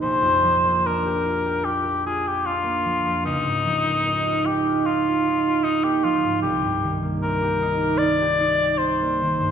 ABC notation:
X:1
M:4/4
L:1/16
Q:1/4=75
K:Bbmix
V:1 name="Cor anglais"
c4 B4 G2 A G F4 | E6 G2 F4 E G F2 | G3 z B4 d4 c4 |]
V:2 name="Harp"
[B,,,F,B,] F,, F, B, D G F G F G F G D B, F, F,, | _D,, A,, F, B, E F E F E F E F E B, F, A,, | C,, G,, E, B, C G E G E G E G C B, E, G,, |]